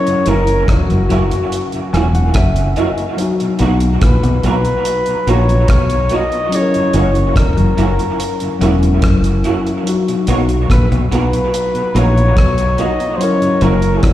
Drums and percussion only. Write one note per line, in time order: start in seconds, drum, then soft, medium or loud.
0.07 closed hi-hat soft
0.26 closed hi-hat medium
0.47 closed hi-hat medium
0.68 kick loud
0.68 cross-stick loud
0.68 closed hi-hat medium
0.90 closed hi-hat soft
1.10 closed hi-hat medium
1.31 closed hi-hat medium
1.52 closed hi-hat medium
1.72 closed hi-hat soft
1.94 cross-stick medium
1.94 closed hi-hat medium
2.15 closed hi-hat soft
2.34 kick loud
2.34 cross-stick loud
2.34 closed hi-hat medium
2.56 closed hi-hat medium
2.76 closed hi-hat medium
2.98 closed hi-hat soft
3.18 closed hi-hat medium
3.40 closed hi-hat medium
3.59 closed hi-hat medium
3.80 closed hi-hat medium
4.02 kick loud
4.02 cross-stick loud
4.02 closed hi-hat medium
4.24 closed hi-hat soft
4.43 closed hi-hat medium
4.65 closed hi-hat medium
4.85 closed hi-hat medium
5.06 closed hi-hat medium
5.27 closed hi-hat medium
5.49 closed hi-hat soft
5.68 kick loud
5.68 cross-stick loud
5.68 closed hi-hat medium
5.90 closed hi-hat medium
6.09 closed hi-hat medium
6.32 closed hi-hat soft
6.52 closed hi-hat medium
6.74 closed hi-hat soft
6.93 closed hi-hat medium
7.15 closed hi-hat medium
7.36 kick loud
7.36 cross-stick loud
7.36 closed hi-hat medium
7.58 closed hi-hat soft
7.78 closed hi-hat medium
7.99 closed hi-hat medium
8.20 closed hi-hat medium
8.40 closed hi-hat medium
8.61 closed hi-hat medium
8.83 closed hi-hat soft
9.02 kick loud
9.02 cross-stick loud
9.02 closed hi-hat medium
9.24 closed hi-hat medium
9.44 closed hi-hat medium
9.67 closed hi-hat soft
9.87 closed hi-hat medium
10.08 closed hi-hat soft
10.27 closed hi-hat medium
10.49 closed hi-hat medium
10.70 kick medium
10.70 cross-stick loud
10.70 closed hi-hat medium
10.92 closed hi-hat soft
11.12 closed hi-hat medium
11.33 closed hi-hat medium
11.54 closed hi-hat loud
11.75 closed hi-hat soft
11.96 closed hi-hat medium
12.17 closed hi-hat soft
12.37 kick loud
12.37 cross-stick loud
12.37 closed hi-hat medium
12.58 closed hi-hat medium
12.78 closed hi-hat medium
13.00 closed hi-hat medium
13.21 closed hi-hat medium
13.42 closed hi-hat medium
13.61 closed hi-hat medium
13.82 closed hi-hat medium
14.03 kick loud
14.03 cross-stick loud
14.03 closed hi-hat medium